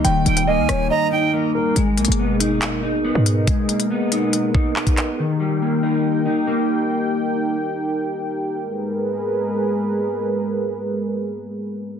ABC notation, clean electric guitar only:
X:1
M:4/4
L:1/8
Q:1/4=140
K:G#m
V:1 name="Clean electric guitar"
[D,A,D] =G, A, D2 D A,2 | G, A, B, D2 D B,2 | G, A, B, D2 D B,2 | D, =G, A, D2 D A,2- |
A,3 z4 z | z8 | z8 |]